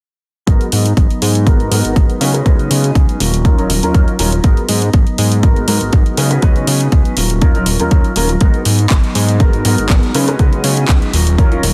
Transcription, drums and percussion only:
0.47 kick loud
0.47 closed hi-hat medium
0.61 closed hi-hat soft
0.72 open hi-hat loud
0.86 closed hi-hat medium
0.97 kick loud
0.97 closed hi-hat medium
1.10 closed hi-hat soft
1.22 open hi-hat loud
1.35 closed hi-hat medium
1.47 kick loud
1.47 closed hi-hat medium
1.60 closed hi-hat soft
1.72 open hi-hat loud
1.85 closed hi-hat medium
1.96 kick loud
1.96 closed hi-hat medium
2.10 closed hi-hat soft
2.21 open hi-hat loud
2.35 closed hi-hat medium
2.46 kick loud
2.46 closed hi-hat soft
2.59 closed hi-hat soft
2.71 open hi-hat loud
2.84 closed hi-hat medium
2.95 kick loud
2.95 closed hi-hat medium
3.09 closed hi-hat soft
3.20 open hi-hat loud
3.34 closed hi-hat medium
3.45 kick loud
3.45 closed hi-hat soft
3.59 closed hi-hat soft
3.70 open hi-hat loud
3.83 closed hi-hat soft
3.94 kick loud
3.94 closed hi-hat soft
4.08 closed hi-hat soft
4.19 open hi-hat loud
4.32 closed hi-hat soft
4.44 kick loud
4.44 closed hi-hat soft
4.57 closed hi-hat soft
4.69 open hi-hat loud
4.82 closed hi-hat soft
4.93 kick loud
4.93 closed hi-hat soft
5.07 closed hi-hat soft
5.18 open hi-hat loud
5.32 closed hi-hat soft
5.43 kick loud
5.43 closed hi-hat soft
5.56 closed hi-hat soft
5.68 open hi-hat loud
5.81 closed hi-hat soft
5.93 kick loud
5.93 closed hi-hat soft
6.06 closed hi-hat soft
6.17 open hi-hat loud
6.31 closed hi-hat soft
6.42 kick loud
6.42 closed hi-hat soft
6.56 closed hi-hat soft
6.67 open hi-hat loud
6.81 closed hi-hat soft
6.92 kick loud
6.92 closed hi-hat soft
7.05 closed hi-hat soft
7.17 open hi-hat loud
7.30 closed hi-hat soft
7.42 kick loud
7.42 closed hi-hat soft
7.55 closed hi-hat soft
7.66 open hi-hat loud
7.80 closed hi-hat soft
7.91 kick loud
7.91 closed hi-hat soft
8.04 closed hi-hat soft
8.16 open hi-hat loud
8.29 closed hi-hat soft
8.41 kick loud
8.41 closed hi-hat soft
8.54 closed hi-hat soft
8.65 open hi-hat loud
8.79 closed hi-hat soft
8.90 kick loud
8.90 clap loud
8.90 closed hi-hat soft
9.04 closed hi-hat soft
9.15 open hi-hat loud
9.29 closed hi-hat soft
9.40 kick loud
9.40 closed hi-hat soft
9.53 closed hi-hat soft
9.65 open hi-hat loud
9.78 closed hi-hat soft
9.89 kick loud
9.89 clap loud
9.89 closed hi-hat soft
10.03 closed hi-hat soft
10.15 open hi-hat loud
10.28 closed hi-hat soft
10.39 kick loud
10.39 closed hi-hat medium
10.53 closed hi-hat soft
10.64 open hi-hat loud
10.77 closed hi-hat medium
10.88 kick medium
10.88 clap loud
10.88 closed hi-hat medium
11.02 closed hi-hat soft
11.13 open hi-hat loud
11.27 closed hi-hat soft
11.38 kick loud
11.38 closed hi-hat soft
11.52 closed hi-hat soft
11.63 open hi-hat loud

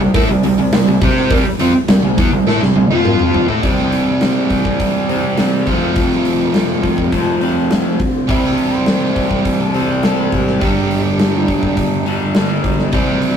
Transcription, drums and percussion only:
0.14 kick loud
0.14 open hi-hat medium
0.14 cowbell medium
0.43 open hi-hat medium
0.73 snare loud
0.73 open hi-hat medium
0.73 cowbell medium
1.01 kick loud
1.01 open hi-hat medium
1.16 snare soft
1.30 kick loud
1.30 open hi-hat medium
1.30 cowbell medium
1.59 open hi-hat medium
1.88 snare loud
1.88 open hi-hat medium
1.88 cowbell medium
2.18 kick loud
2.18 open hi-hat medium
2.47 snare medium
2.47 cowbell medium
2.62 snare medium
2.76 high tom medium
2.91 high tom medium
3.05 mid tom medium
3.05 cowbell medium
3.19 mid tom medium
3.34 floor tom medium
3.48 floor tom medium
3.63 kick medium
3.63 open hi-hat medium
3.78 snare soft
3.92 open hi-hat soft
4.21 snare medium
4.21 open hi-hat medium
4.50 kick medium
4.50 open hi-hat soft
4.65 kick medium
4.80 kick medium
4.80 open hi-hat medium
5.09 open hi-hat soft
5.38 snare loud
5.38 open hi-hat medium
5.67 kick medium
5.67 open hi-hat soft
5.96 kick medium
5.96 open hi-hat medium
6.11 snare soft
6.25 open hi-hat soft
6.54 snare medium
6.54 open hi-hat medium
6.83 kick medium
6.83 open hi-hat soft
6.98 kick medium
7.12 kick medium
7.12 open hi-hat medium
7.41 open hi-hat soft
7.71 snare loud
7.71 open hi-hat medium
7.99 kick medium
7.99 open hi-hat soft
8.29 kick loud
8.29 open hi-hat medium
8.58 open hi-hat soft
8.86 snare medium
8.86 open hi-hat medium
9.16 kick medium
9.16 open hi-hat soft
9.31 kick medium
9.45 kick medium
9.45 open hi-hat medium
9.74 open hi-hat soft
10.03 snare loud
10.03 open hi-hat medium
10.32 kick medium
10.32 open hi-hat soft
10.47 snare soft
10.61 kick loud
10.61 open hi-hat medium
10.91 open hi-hat soft
11.19 snare medium
11.19 open hi-hat medium
11.48 kick medium
11.48 open hi-hat soft
11.63 kick medium
11.77 kick medium
11.77 open hi-hat medium
12.06 open hi-hat soft
12.35 snare loud
12.35 open hi-hat medium
12.64 kick medium
12.64 open hi-hat soft
12.79 snare soft
12.93 kick loud
12.93 open hi-hat medium
13.22 open hi-hat soft

